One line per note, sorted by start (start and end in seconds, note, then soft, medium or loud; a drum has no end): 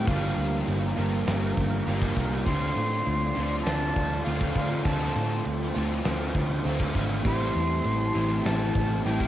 0.00 2.43 G4 medium
0.07 0.32 G1 medium
0.07 0.95 G2 medium
0.07 0.95 D3 medium
0.07 0.97 F3 medium
0.07 0.96 G3 medium
0.07 0.96 A#3 medium
0.07 0.95 D4 medium
0.07 0.96 F4 loud
0.07 0.67 F5 medium
0.07 2.45 F5 medium
0.07 2.45 A#5 medium
0.07 kick loud
0.07 crash medium
0.38 0.62 D2 loud
0.38 crash medium
0.68 0.92 G1 medium
0.68 crash medium
0.96 1.22 G1 medium
0.96 1.84 G2 medium
0.96 1.85 D3 medium
0.96 1.87 F3 medium
0.96 1.86 G3 medium
0.96 1.85 A#3 medium
0.96 1.89 D4 medium
0.96 1.88 F4 medium
0.96 crash medium
1.27 1.52 G1 medium
1.27 snare loud
1.27 crash medium
1.57 1.81 G1 medium
1.57 kick medium
1.57 snare soft
1.57 crash medium
1.86 2.11 G1 medium
1.86 2.44 G2 medium
1.86 2.45 D3 medium
1.86 2.47 F3 medium
1.86 2.45 G3 medium
1.86 2.46 A#3 medium
1.86 2.49 D4 medium
1.86 2.49 F4 medium
1.86 crash medium
2.02 kick medium
2.16 2.41 C2 medium
2.16 kick medium
2.16 crash medium
2.45 2.71 D2 loud
2.45 3.38 D3 medium
2.45 3.37 F3 loud
2.45 3.36 A3 medium
2.45 3.37 C4 medium
2.45 7.22 F4 medium
2.45 3.36 F4 loud
2.45 4.84 D5 medium
2.45 3.65 C6 loud
2.45 7.22 C6 medium
2.45 kick loud
2.45 crash medium
2.50 3.34 D4 medium
2.76 3.01 A2 medium
2.76 crash medium
3.06 3.31 D2 medium
3.06 crash medium
3.35 3.61 D2 medium
3.35 4.23 D3 medium
3.35 4.25 F3 medium
3.35 4.27 A3 medium
3.35 4.27 C4 medium
3.35 4.24 D4 medium
3.35 4.24 F4 medium
3.35 crash medium
3.63 3.91 D2 medium
3.63 4.26 A5 loud
3.63 snare medium
3.63 crash medium
3.96 4.21 D2 medium
3.96 kick medium
3.96 crash medium
4.24 4.51 D2 medium
4.24 4.83 D3 medium
4.24 4.84 F3 medium
4.24 4.87 A3 medium
4.24 4.86 C4 medium
4.24 4.85 F5 medium
4.24 crash medium
4.28 4.85 D4 medium
4.28 4.85 F4 loud
4.41 kick medium
4.55 4.80 D3 medium
4.55 kick medium
4.55 crash medium
4.84 5.10 D2 medium
4.84 5.73 D3 medium
4.84 5.74 F3 loud
4.84 5.76 A3 loud
4.84 5.75 C4 loud
4.84 5.73 F4 medium
4.84 9.28 C5 medium
4.84 5.45 A5 medium
4.84 kick loud
4.84 crash medium
4.88 5.73 D4 medium
5.16 5.40 A2 medium
5.16 crash medium
5.45 5.70 D2 medium
5.45 crash medium
5.74 6.00 D2 medium
5.74 6.63 D3 medium
5.74 6.64 F3 medium
5.74 6.64 A3 medium
5.74 6.64 C4 medium
5.74 6.63 D4 medium
5.74 6.63 F4 medium
5.74 crash medium
6.05 6.31 D2 medium
6.05 snare loud
6.05 crash medium
6.35 6.60 D2 medium
6.35 kick medium
6.35 snare soft
6.35 crash medium
6.64 6.90 D2 medium
6.64 7.23 D3 medium
6.64 7.24 F3 medium
6.64 7.24 A3 medium
6.64 7.24 C4 medium
6.64 7.24 F4 medium
6.64 crash medium
6.68 7.25 D4 medium
6.80 kick medium
6.95 7.20 G#1 medium
6.95 kick medium
6.95 crash medium
7.24 7.50 A1 medium
7.24 8.13 A2 medium
7.24 8.13 E3 medium
7.24 8.15 G3 medium
7.24 8.14 A3 medium
7.24 8.13 C4 medium
7.24 8.12 E4 medium
7.24 9.28 G4 medium
7.24 9.28 A5 medium
7.24 8.46 C6 loud
7.24 kick loud
7.24 crash medium
7.55 7.80 E2 medium
7.55 crash medium
7.84 8.10 A1 medium
7.84 crash medium
8.13 8.40 A1 medium
8.13 9.02 A2 medium
8.13 9.04 E3 medium
8.13 9.05 G3 medium
8.13 9.04 A3 medium
8.13 9.03 C4 medium
8.13 9.03 E4 medium
8.13 crash medium
8.45 8.70 A1 medium
8.45 9.04 A5 medium
8.45 snare loud
8.45 crash medium
8.75 9.00 A1 medium
8.75 kick medium
8.75 crash medium
9.04 9.28 A1 medium
9.04 9.28 A2 medium
9.04 9.28 E3 medium
9.04 9.28 G3 medium
9.04 9.28 A3 medium
9.04 9.28 C4 medium
9.04 9.28 E4 medium
9.04 9.28 G5 loud
9.04 crash medium
9.20 kick medium